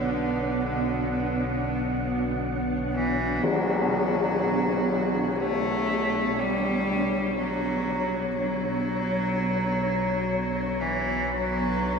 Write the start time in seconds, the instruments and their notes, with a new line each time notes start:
Already playing: synth drone B1 B2, cello D3, ambient pad B3 D4 C#5, synth texture F#5
2.93 cello E3
3.41 synth drone B1 B2, cello F#3, synth texture C#5, tam-tam
5.40 cello A3
6.39 cello G3
7.37 cello F#3
8.35 cello F#3
10.81 cello E3
11.32 cello F#3